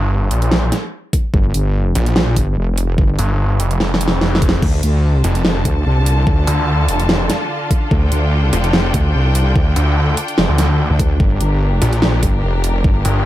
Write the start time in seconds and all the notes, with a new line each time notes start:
Already playing: G1
0.31 A#1, closed hi-hat
0.42 closed hi-hat
0.52 snare
0.72 snare, closed hi-hat
1.13 kick, closed hi-hat
1.34 G1, kick
1.54 G1, closed hi-hat
1.95 A#1, closed hi-hat
2.06 closed hi-hat
2.16 snare
2.36 G1, kick, closed hi-hat
2.57 F1
2.78 closed hi-hat
2.98 G1, kick
3.19 G1, closed hi-hat
3.60 F1, closed hi-hat
3.71 closed hi-hat
3.80 snare
3.94 snare
4.01 closed hi-hat
4.08 snare
4.21 F1, snare
4.35 snare
4.42 kick, closed hi-hat
4.49 snare
4.62 D2 D3 D4 F4 A4 A5, kick, crash
4.83 D2, closed hi-hat
5.24 F1, closed hi-hat
5.35 closed hi-hat
5.45 snare
5.65 D2, kick, closed hi-hat
5.86 C2
6.06 closed hi-hat
6.27 D2, kick
6.47 D2, closed hi-hat
6.88 F1, closed hi-hat
7.00 closed hi-hat
7.09 snare
7.30 snare, closed hi-hat
7.71 kick, closed hi-hat
7.91 D2 G5, kick
8.12 D2, closed hi-hat
8.53 F1, closed hi-hat
8.64 closed hi-hat
8.73 snare
8.94 D2, kick, closed hi-hat
9.15 C2
9.35 closed hi-hat
9.56 D2, kick
9.76 D2, closed hi-hat
10.17 closed hi-hat
10.28 closed hi-hat
10.38 F1, snare
10.49 D2
10.58 snare, closed hi-hat
10.90 D2
10.99 kick, closed hi-hat
11.20 G1 G4 A#4, kick
11.41 G1, closed hi-hat
11.82 A#1, closed hi-hat
11.93 closed hi-hat
12.02 snare
12.23 G1, kick, closed hi-hat
12.43 F1
12.64 closed hi-hat
12.84 G1, kick
13.05 G1, closed hi-hat